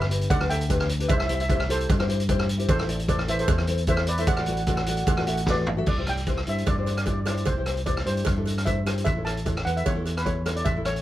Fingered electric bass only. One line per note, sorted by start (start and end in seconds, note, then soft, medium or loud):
0.00 0.26 G1 loud
0.30 1.06 D2 loud
1.10 1.85 C2 medium
1.89 2.65 G2 loud
2.69 3.44 A1 loud
3.48 4.24 E2 loud
4.27 5.03 A1 loud
5.07 5.83 A1 medium
5.87 6.43 C2 medium
6.47 6.66 G2 medium
6.67 7.43 G2 medium
7.47 8.03 C2 medium
8.06 8.25 G2 medium
8.27 9.02 G2 medium
9.06 9.62 A1 medium
9.66 9.85 E2 medium
9.86 10.62 E2 medium
10.65 11.02 A1 medium